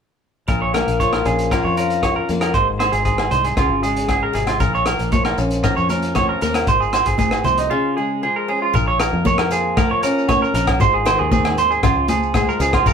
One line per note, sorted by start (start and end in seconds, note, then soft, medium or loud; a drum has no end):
0.48 0.83 A#1 medium
0.48 1.51 A#2 medium
0.48 0.61 A#4 medium
0.48 kick medium
0.48 closed hi-hat soft
0.62 0.74 C#5 medium
0.74 2.29 A#3 medium
0.74 0.99 A#4 medium
0.74 cross-stick medium
0.74 closed hi-hat soft
0.74 low agogo medium
0.88 1.22 A#1 medium
0.88 closed hi-hat soft
1.00 2.02 F3 medium
1.00 1.12 C#5 medium
1.00 kick medium
1.00 closed hi-hat soft
1.13 1.25 A#4 medium
1.13 cross-stick medium
1.13 low agogo medium
1.25 1.60 A#1 medium
1.25 1.77 C#4 medium
1.25 1.50 G#4 medium
1.25 closed hi-hat soft
1.39 closed hi-hat soft
1.51 2.55 F2 medium
1.51 2.55 F4 medium
1.51 1.64 A#4 medium
1.51 kick medium
1.51 cross-stick medium
1.51 closed hi-hat soft
1.51 low agogo medium
1.64 2.22 F2 medium
1.64 1.77 C#5 medium
1.77 2.52 C#4 soft
1.77 2.02 A#4 medium
1.77 closed hi-hat medium
1.90 closed hi-hat soft
2.03 2.16 C#5 medium
2.03 muted steel-string acoustic guitar stroke medium
2.03 kick medium
2.03 cross-stick medium
2.03 closed hi-hat soft
2.03 low agogo medium
2.16 2.28 A#4 medium
2.29 2.52 F2 medium
2.29 2.52 A#3 medium
2.29 closed hi-hat soft
2.41 2.54 A#4 medium
2.41 cross-stick medium
2.41 closed hi-hat soft
2.41 low agogo medium
2.54 2.89 G#1 medium
2.54 3.55 G#2 medium
2.54 2.67 C5 medium
2.54 kick medium
2.54 closed hi-hat soft
2.79 3.55 C4 medium
2.79 2.92 C5 medium
2.79 cross-stick medium
2.79 closed hi-hat soft
2.79 low agogo medium
2.92 3.28 G#1 medium
2.92 3.04 G#4 medium
2.92 closed hi-hat soft
3.05 3.59 D#3 medium
3.05 3.30 G#4 medium
3.05 kick medium
3.05 closed hi-hat soft
3.18 cross-stick medium
3.18 low agogo medium
3.31 3.55 C2 medium
3.31 3.56 D#4 medium
3.31 3.44 C5 medium
3.31 closed hi-hat soft
3.44 3.57 G#4 medium
3.44 closed hi-hat soft
3.56 3.69 C#2 medium
3.56 4.08 C#3 medium
3.56 3.82 F4 medium
3.56 kick medium
3.56 cross-stick medium
3.56 closed hi-hat soft
3.56 low agogo medium
3.69 4.28 G#1 medium
3.83 4.61 G#3 medium
3.83 4.08 G#4 medium
3.83 closed hi-hat soft
3.96 closed hi-hat soft
4.09 4.33 C#3 medium
4.09 4.22 G#4 medium
4.09 kick medium
4.09 cross-stick medium
4.09 closed hi-hat soft
4.09 low agogo soft
4.23 4.35 A#4 medium
4.33 4.58 G#1 medium
4.33 4.60 C3 medium
4.33 4.47 G#4 medium
4.33 closed hi-hat soft
4.47 4.60 F4 medium
4.47 cross-stick medium
4.47 closed hi-hat soft
4.47 low agogo medium
4.60 4.95 A#1 medium
4.60 5.64 A#2 medium
4.60 4.73 A#4 medium
4.60 kick medium
4.60 closed hi-hat soft
4.60 muted conga soft
4.60 shekere medium
4.75 4.87 C#5 medium
4.75 shekere soft
4.86 6.41 A#3 medium
4.86 5.12 A#4 medium
4.86 cross-stick medium
4.86 closed hi-hat soft
4.86 muted conga soft
4.86 low agogo medium
4.86 shekere medium
4.99 5.34 A#1 medium
4.99 closed hi-hat soft
5.12 6.14 F3 medium
5.12 5.25 C#5 medium
5.12 kick medium
5.12 closed hi-hat soft
5.12 high conga medium
5.12 shekere medium
5.25 5.38 A#4 medium
5.25 cross-stick medium
5.25 low agogo medium
5.38 5.73 A#1 medium
5.38 5.90 C#4 medium
5.38 closed hi-hat soft
5.38 shekere medium
5.51 closed hi-hat soft
5.51 shekere soft
5.64 6.67 F2 medium
5.64 5.76 A#4 medium
5.64 muted steel-string acoustic guitar stroke medium
5.64 kick medium
5.64 cross-stick medium
5.64 closed hi-hat soft
5.64 muted conga soft
5.64 low agogo medium
5.64 shekere medium
5.77 6.35 F2 medium
5.77 5.89 C#5 medium
5.77 shekere soft
5.89 6.65 C#4 soft
5.89 6.15 A#4 medium
5.89 closed hi-hat soft
5.89 high conga medium
5.89 shekere medium
6.02 closed hi-hat soft
6.15 6.64 F3 medium
6.15 6.28 C#5 medium
6.15 kick medium
6.15 cross-stick medium
6.15 closed hi-hat soft
6.15 high conga medium
6.15 low agogo soft
6.15 shekere medium
6.29 6.41 A#4 medium
6.41 6.65 D#2 medium
6.41 6.65 A#3 medium
6.41 6.54 A#4 medium
6.41 closed hi-hat soft
6.41 muted conga soft
6.41 shekere medium
6.54 6.67 A#4 medium
6.54 cross-stick medium
6.54 closed hi-hat soft
6.54 low agogo medium
6.67 7.02 G#1 medium
6.67 7.68 G#2 medium
6.67 6.80 C5 medium
6.67 kick medium
6.67 closed hi-hat soft
6.67 muted conga soft
6.67 shekere medium
6.80 6.93 G#4 medium
6.80 shekere soft
6.93 7.69 C4 medium
6.93 7.06 C5 medium
6.93 cross-stick medium
6.93 closed hi-hat soft
6.93 muted conga soft
6.93 low agogo medium
6.93 shekere medium
7.06 7.41 G#1 medium
7.06 7.18 G#4 medium
7.06 kick medium
7.06 closed hi-hat soft
7.06 shekere soft
7.18 7.44 A#2 medium
7.18 7.44 G#4 medium
7.18 kick medium
7.18 closed hi-hat soft
7.18 high conga medium
7.18 shekere medium
7.31 cross-stick medium
7.31 low agogo medium
7.31 shekere soft
7.44 7.68 C2 medium
7.44 7.70 C3 medium
7.44 7.57 C5 medium
7.44 closed hi-hat soft
7.44 high conga medium
7.44 low conga medium
7.44 shekere medium
7.58 7.71 D#4 medium
7.58 closed hi-hat soft
7.58 shekere soft
7.70 8.22 C#3 medium
7.70 7.95 F4 medium
7.97 8.75 G#3 medium
7.97 8.21 G#4 medium
8.23 8.71 F3 medium
8.23 8.35 G#4 medium
8.36 8.48 A#4 medium
8.48 8.71 C#4 medium
8.48 8.61 G#4 medium
8.62 8.74 F4 medium
8.74 9.09 A#1 medium
8.74 10.80 A#2 medium
8.74 8.87 A#4 medium
8.74 kick medium
8.74 muted conga soft
8.74 shekere medium
8.88 9.00 C#5 medium
9.00 9.25 A#4 medium
9.00 cross-stick medium
9.00 closed hi-hat soft
9.00 low agogo medium
9.00 shekere medium
9.13 10.05 F2 medium
9.25 9.77 A#3 medium
9.25 9.39 C#5 medium
9.25 kick medium
9.25 high conga medium
9.25 shekere medium
9.38 9.51 A#4 medium
9.38 cross-stick medium
9.38 low agogo medium
9.51 10.28 F3 medium
9.51 9.76 G#4 medium
9.51 closed hi-hat soft
9.51 muted conga soft
9.51 shekere medium
9.77 10.54 A#3 medium
9.77 9.90 A#4 medium
9.77 kick medium
9.77 cross-stick medium
9.77 muted conga soft
9.77 high conga medium
9.77 low agogo medium
9.77 shekere medium
9.91 10.03 C#5 medium
10.03 10.78 C#4 medium
10.03 10.28 A#4 medium
10.03 closed hi-hat medium
10.03 muted conga soft
10.03 shekere medium
10.18 shekere soft
10.29 10.41 C#5 medium
10.29 muted steel-string acoustic guitar stroke medium
10.29 kick medium
10.29 cross-stick medium
10.29 high conga medium
10.29 low agogo medium
10.29 shekere medium
10.42 10.54 A#4 medium
10.42 shekere soft
10.54 10.77 A#1 medium
10.54 10.78 A#3 medium
10.54 10.67 A#4 medium
10.54 closed hi-hat medium
10.54 shekere medium
10.67 10.80 A#4 medium
10.67 kick medium
10.67 cross-stick medium
10.67 low agogo medium
10.80 11.15 G#1 medium
10.80 11.80 G#2 medium
10.80 10.93 C5 loud
10.80 kick medium
10.80 muted conga soft
10.80 shekere medium
10.94 11.06 G#4 medium
11.05 11.57 D#3 medium
11.05 11.19 C5 medium
11.05 cross-stick medium
11.05 closed hi-hat soft
11.05 low agogo medium
11.05 shekere medium
11.19 11.77 D#2 medium
11.19 11.31 G#4 medium
11.32 11.80 C4 medium
11.32 11.57 G#4 medium
11.32 kick medium
11.32 high conga loud
11.32 shekere medium
11.45 cross-stick medium
11.45 low agogo medium
11.57 11.70 C5 medium
11.57 closed hi-hat soft
11.57 muted conga soft
11.57 shekere medium
11.71 11.83 G#4 medium
11.71 shekere soft
11.83 12.52 C#2 loud
11.83 12.09 C#3 medium
11.83 12.08 F4 medium
11.83 kick medium
11.83 cross-stick medium
11.83 muted conga soft
11.83 low conga medium
11.83 low agogo medium
11.83 shekere medium
12.08 12.59 F3 medium
12.08 12.34 G#4 medium
12.08 closed hi-hat medium
12.08 muted conga soft
12.08 high conga medium
12.08 shekere medium
12.23 shekere soft
12.34 12.87 G#3 medium
12.34 12.48 G#4 medium
12.34 kick medium
12.34 cross-stick medium
12.34 high conga medium
12.34 low agogo medium
12.34 shekere medium
12.49 12.61 A#4 medium
12.49 shekere soft
12.60 12.83 C#2 loud
12.60 12.83 F3 medium
12.60 12.73 G#4 medium
12.60 closed hi-hat soft
12.60 shekere medium
12.73 12.86 F4 medium
12.73 kick medium
12.73 cross-stick medium
12.73 low agogo medium
12.86 12.93 A#1 medium
12.86 12.93 A#2 medium
12.86 12.93 A#4 loud
12.86 kick medium
12.86 muted conga soft
12.86 shekere medium